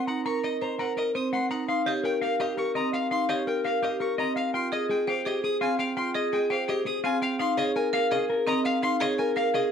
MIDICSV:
0, 0, Header, 1, 4, 480
1, 0, Start_track
1, 0, Tempo, 357143
1, 344, Time_signature, 4, 2, 24, 8
1, 13058, End_track
2, 0, Start_track
2, 0, Title_t, "Violin"
2, 0, Program_c, 0, 40
2, 106, Note_on_c, 0, 78, 72
2, 285, Note_off_c, 0, 78, 0
2, 346, Note_on_c, 0, 85, 88
2, 525, Note_off_c, 0, 85, 0
2, 585, Note_on_c, 0, 75, 77
2, 765, Note_off_c, 0, 75, 0
2, 826, Note_on_c, 0, 82, 66
2, 1005, Note_off_c, 0, 82, 0
2, 1066, Note_on_c, 0, 78, 85
2, 1245, Note_off_c, 0, 78, 0
2, 1310, Note_on_c, 0, 75, 71
2, 1488, Note_off_c, 0, 75, 0
2, 1551, Note_on_c, 0, 87, 70
2, 1728, Note_off_c, 0, 87, 0
2, 1789, Note_on_c, 0, 84, 90
2, 1967, Note_off_c, 0, 84, 0
2, 2027, Note_on_c, 0, 78, 72
2, 2206, Note_off_c, 0, 78, 0
2, 2266, Note_on_c, 0, 84, 84
2, 2445, Note_off_c, 0, 84, 0
2, 2510, Note_on_c, 0, 75, 82
2, 2688, Note_off_c, 0, 75, 0
2, 2751, Note_on_c, 0, 79, 70
2, 2928, Note_off_c, 0, 79, 0
2, 2989, Note_on_c, 0, 77, 91
2, 3167, Note_off_c, 0, 77, 0
2, 3226, Note_on_c, 0, 75, 73
2, 3405, Note_off_c, 0, 75, 0
2, 3463, Note_on_c, 0, 85, 76
2, 3643, Note_off_c, 0, 85, 0
2, 3706, Note_on_c, 0, 82, 91
2, 3885, Note_off_c, 0, 82, 0
2, 3946, Note_on_c, 0, 77, 81
2, 4125, Note_off_c, 0, 77, 0
2, 4185, Note_on_c, 0, 84, 95
2, 4364, Note_off_c, 0, 84, 0
2, 4421, Note_on_c, 0, 75, 71
2, 4602, Note_off_c, 0, 75, 0
2, 4667, Note_on_c, 0, 79, 72
2, 4846, Note_off_c, 0, 79, 0
2, 4907, Note_on_c, 0, 77, 94
2, 5086, Note_off_c, 0, 77, 0
2, 5147, Note_on_c, 0, 75, 73
2, 5326, Note_off_c, 0, 75, 0
2, 5383, Note_on_c, 0, 85, 77
2, 5563, Note_off_c, 0, 85, 0
2, 5628, Note_on_c, 0, 82, 94
2, 5806, Note_off_c, 0, 82, 0
2, 5868, Note_on_c, 0, 77, 80
2, 6046, Note_off_c, 0, 77, 0
2, 6110, Note_on_c, 0, 84, 92
2, 6288, Note_off_c, 0, 84, 0
2, 6349, Note_on_c, 0, 75, 74
2, 6527, Note_off_c, 0, 75, 0
2, 6590, Note_on_c, 0, 79, 69
2, 6768, Note_off_c, 0, 79, 0
2, 6828, Note_on_c, 0, 77, 98
2, 7006, Note_off_c, 0, 77, 0
2, 7069, Note_on_c, 0, 75, 76
2, 7247, Note_off_c, 0, 75, 0
2, 7310, Note_on_c, 0, 87, 78
2, 7488, Note_off_c, 0, 87, 0
2, 7547, Note_on_c, 0, 80, 96
2, 7726, Note_off_c, 0, 80, 0
2, 7785, Note_on_c, 0, 77, 77
2, 7965, Note_off_c, 0, 77, 0
2, 8022, Note_on_c, 0, 84, 88
2, 8203, Note_off_c, 0, 84, 0
2, 8261, Note_on_c, 0, 75, 75
2, 8442, Note_off_c, 0, 75, 0
2, 8501, Note_on_c, 0, 79, 73
2, 8682, Note_off_c, 0, 79, 0
2, 8742, Note_on_c, 0, 77, 98
2, 8923, Note_off_c, 0, 77, 0
2, 8983, Note_on_c, 0, 75, 84
2, 9163, Note_off_c, 0, 75, 0
2, 9223, Note_on_c, 0, 87, 81
2, 9404, Note_off_c, 0, 87, 0
2, 9464, Note_on_c, 0, 80, 109
2, 9644, Note_off_c, 0, 80, 0
2, 9708, Note_on_c, 0, 77, 86
2, 9886, Note_off_c, 0, 77, 0
2, 9941, Note_on_c, 0, 84, 104
2, 10122, Note_off_c, 0, 84, 0
2, 10183, Note_on_c, 0, 75, 88
2, 10364, Note_off_c, 0, 75, 0
2, 10426, Note_on_c, 0, 80, 80
2, 10605, Note_off_c, 0, 80, 0
2, 10663, Note_on_c, 0, 77, 99
2, 10843, Note_off_c, 0, 77, 0
2, 10903, Note_on_c, 0, 75, 81
2, 11084, Note_off_c, 0, 75, 0
2, 11384, Note_on_c, 0, 82, 100
2, 11564, Note_off_c, 0, 82, 0
2, 11626, Note_on_c, 0, 77, 89
2, 11805, Note_off_c, 0, 77, 0
2, 11865, Note_on_c, 0, 84, 102
2, 12044, Note_off_c, 0, 84, 0
2, 12102, Note_on_c, 0, 75, 86
2, 12283, Note_off_c, 0, 75, 0
2, 12339, Note_on_c, 0, 80, 81
2, 12521, Note_off_c, 0, 80, 0
2, 12584, Note_on_c, 0, 77, 96
2, 12764, Note_off_c, 0, 77, 0
2, 12825, Note_on_c, 0, 75, 78
2, 13005, Note_off_c, 0, 75, 0
2, 13058, End_track
3, 0, Start_track
3, 0, Title_t, "Clean electric guitar"
3, 0, Program_c, 1, 27
3, 100, Note_on_c, 1, 82, 72
3, 328, Note_off_c, 1, 82, 0
3, 344, Note_on_c, 1, 82, 90
3, 592, Note_on_c, 1, 75, 80
3, 656, Note_off_c, 1, 82, 0
3, 830, Note_on_c, 1, 72, 72
3, 899, Note_off_c, 1, 75, 0
3, 1066, Note_on_c, 1, 82, 81
3, 1138, Note_off_c, 1, 72, 0
3, 1301, Note_on_c, 1, 70, 66
3, 1377, Note_off_c, 1, 82, 0
3, 1539, Note_off_c, 1, 70, 0
3, 1545, Note_on_c, 1, 72, 71
3, 1785, Note_on_c, 1, 78, 96
3, 1856, Note_off_c, 1, 72, 0
3, 2020, Note_off_c, 1, 78, 0
3, 2026, Note_on_c, 1, 82, 71
3, 2259, Note_off_c, 1, 82, 0
3, 2264, Note_on_c, 1, 77, 101
3, 2500, Note_on_c, 1, 73, 80
3, 2576, Note_off_c, 1, 77, 0
3, 2735, Note_on_c, 1, 70, 74
3, 2814, Note_off_c, 1, 73, 0
3, 2976, Note_on_c, 1, 77, 92
3, 3053, Note_off_c, 1, 70, 0
3, 3222, Note_on_c, 1, 67, 72
3, 3293, Note_off_c, 1, 77, 0
3, 3459, Note_on_c, 1, 70, 73
3, 3535, Note_off_c, 1, 67, 0
3, 3698, Note_on_c, 1, 75, 94
3, 3774, Note_off_c, 1, 70, 0
3, 3936, Note_off_c, 1, 75, 0
3, 3941, Note_on_c, 1, 77, 70
3, 4166, Note_off_c, 1, 77, 0
3, 4182, Note_on_c, 1, 77, 88
3, 4422, Note_on_c, 1, 73, 85
3, 4495, Note_off_c, 1, 77, 0
3, 4659, Note_off_c, 1, 73, 0
3, 4665, Note_on_c, 1, 70, 76
3, 4903, Note_on_c, 1, 77, 92
3, 4976, Note_off_c, 1, 70, 0
3, 5140, Note_on_c, 1, 67, 76
3, 5215, Note_off_c, 1, 77, 0
3, 5379, Note_on_c, 1, 70, 78
3, 5454, Note_off_c, 1, 67, 0
3, 5621, Note_on_c, 1, 75, 102
3, 5694, Note_off_c, 1, 70, 0
3, 5853, Note_off_c, 1, 75, 0
3, 5858, Note_on_c, 1, 77, 73
3, 6096, Note_off_c, 1, 77, 0
3, 6101, Note_on_c, 1, 79, 92
3, 6344, Note_off_c, 1, 79, 0
3, 6349, Note_on_c, 1, 75, 80
3, 6577, Note_on_c, 1, 68, 75
3, 6658, Note_off_c, 1, 75, 0
3, 6825, Note_on_c, 1, 79, 91
3, 6894, Note_off_c, 1, 68, 0
3, 7072, Note_on_c, 1, 67, 73
3, 7136, Note_off_c, 1, 79, 0
3, 7303, Note_off_c, 1, 67, 0
3, 7309, Note_on_c, 1, 68, 80
3, 7540, Note_on_c, 1, 77, 96
3, 7618, Note_off_c, 1, 68, 0
3, 7776, Note_off_c, 1, 77, 0
3, 7781, Note_on_c, 1, 79, 80
3, 8006, Note_off_c, 1, 79, 0
3, 8022, Note_on_c, 1, 79, 98
3, 8260, Note_off_c, 1, 79, 0
3, 8265, Note_on_c, 1, 75, 88
3, 8507, Note_on_c, 1, 68, 84
3, 8576, Note_off_c, 1, 75, 0
3, 8738, Note_on_c, 1, 79, 90
3, 8817, Note_off_c, 1, 68, 0
3, 8990, Note_on_c, 1, 67, 84
3, 9054, Note_off_c, 1, 79, 0
3, 9216, Note_off_c, 1, 67, 0
3, 9221, Note_on_c, 1, 68, 84
3, 9459, Note_on_c, 1, 77, 99
3, 9535, Note_off_c, 1, 68, 0
3, 9695, Note_off_c, 1, 77, 0
3, 9700, Note_on_c, 1, 79, 79
3, 9935, Note_off_c, 1, 79, 0
3, 9940, Note_on_c, 1, 77, 101
3, 10179, Note_on_c, 1, 73, 92
3, 10254, Note_off_c, 1, 77, 0
3, 10422, Note_off_c, 1, 73, 0
3, 10428, Note_on_c, 1, 70, 85
3, 10663, Note_on_c, 1, 77, 108
3, 10737, Note_off_c, 1, 70, 0
3, 10911, Note_on_c, 1, 68, 84
3, 10976, Note_off_c, 1, 77, 0
3, 11150, Note_on_c, 1, 70, 86
3, 11218, Note_off_c, 1, 68, 0
3, 11389, Note_on_c, 1, 75, 108
3, 11458, Note_off_c, 1, 70, 0
3, 11626, Note_off_c, 1, 75, 0
3, 11632, Note_on_c, 1, 77, 81
3, 11853, Note_off_c, 1, 77, 0
3, 11870, Note_on_c, 1, 77, 104
3, 12111, Note_on_c, 1, 73, 94
3, 12178, Note_off_c, 1, 77, 0
3, 12347, Note_off_c, 1, 73, 0
3, 12352, Note_on_c, 1, 70, 83
3, 12588, Note_on_c, 1, 77, 99
3, 12659, Note_off_c, 1, 70, 0
3, 12826, Note_on_c, 1, 68, 80
3, 12898, Note_off_c, 1, 77, 0
3, 13058, Note_off_c, 1, 68, 0
3, 13058, End_track
4, 0, Start_track
4, 0, Title_t, "Marimba"
4, 0, Program_c, 2, 12
4, 107, Note_on_c, 2, 63, 73
4, 346, Note_on_c, 2, 70, 87
4, 417, Note_off_c, 2, 63, 0
4, 657, Note_off_c, 2, 70, 0
4, 827, Note_on_c, 2, 72, 85
4, 1065, Note_on_c, 2, 70, 75
4, 1137, Note_off_c, 2, 72, 0
4, 1376, Note_off_c, 2, 70, 0
4, 1545, Note_on_c, 2, 60, 90
4, 1856, Note_off_c, 2, 60, 0
4, 2027, Note_on_c, 2, 63, 66
4, 2251, Note_off_c, 2, 63, 0
4, 2267, Note_on_c, 2, 63, 77
4, 2506, Note_on_c, 2, 67, 95
4, 2577, Note_off_c, 2, 63, 0
4, 2817, Note_off_c, 2, 67, 0
4, 2987, Note_on_c, 2, 70, 87
4, 3228, Note_on_c, 2, 67, 71
4, 3297, Note_off_c, 2, 70, 0
4, 3537, Note_off_c, 2, 67, 0
4, 3703, Note_on_c, 2, 60, 86
4, 4016, Note_off_c, 2, 60, 0
4, 4180, Note_on_c, 2, 63, 74
4, 4419, Note_on_c, 2, 67, 91
4, 4494, Note_off_c, 2, 63, 0
4, 4734, Note_off_c, 2, 67, 0
4, 4899, Note_on_c, 2, 70, 88
4, 5142, Note_on_c, 2, 67, 74
4, 5214, Note_off_c, 2, 70, 0
4, 5455, Note_off_c, 2, 67, 0
4, 5623, Note_on_c, 2, 60, 82
4, 5935, Note_off_c, 2, 60, 0
4, 6103, Note_on_c, 2, 65, 80
4, 6342, Note_on_c, 2, 68, 91
4, 6416, Note_off_c, 2, 65, 0
4, 6655, Note_off_c, 2, 68, 0
4, 6820, Note_on_c, 2, 72, 90
4, 7060, Note_on_c, 2, 68, 81
4, 7135, Note_off_c, 2, 72, 0
4, 7375, Note_off_c, 2, 68, 0
4, 7540, Note_on_c, 2, 60, 85
4, 7854, Note_off_c, 2, 60, 0
4, 8020, Note_on_c, 2, 65, 79
4, 8259, Note_on_c, 2, 68, 98
4, 8334, Note_off_c, 2, 65, 0
4, 8574, Note_off_c, 2, 68, 0
4, 8739, Note_on_c, 2, 72, 94
4, 8978, Note_on_c, 2, 68, 84
4, 9054, Note_off_c, 2, 72, 0
4, 9294, Note_off_c, 2, 68, 0
4, 9457, Note_on_c, 2, 60, 95
4, 9773, Note_off_c, 2, 60, 0
4, 9937, Note_on_c, 2, 63, 80
4, 10178, Note_on_c, 2, 68, 107
4, 10253, Note_off_c, 2, 63, 0
4, 10494, Note_off_c, 2, 68, 0
4, 10658, Note_on_c, 2, 70, 105
4, 10898, Note_on_c, 2, 68, 84
4, 10974, Note_off_c, 2, 70, 0
4, 11214, Note_off_c, 2, 68, 0
4, 11378, Note_on_c, 2, 60, 104
4, 11694, Note_off_c, 2, 60, 0
4, 11858, Note_on_c, 2, 63, 82
4, 12098, Note_on_c, 2, 68, 106
4, 12174, Note_off_c, 2, 63, 0
4, 12414, Note_off_c, 2, 68, 0
4, 12580, Note_on_c, 2, 70, 101
4, 12818, Note_on_c, 2, 68, 75
4, 12894, Note_off_c, 2, 70, 0
4, 13058, Note_off_c, 2, 68, 0
4, 13058, End_track
0, 0, End_of_file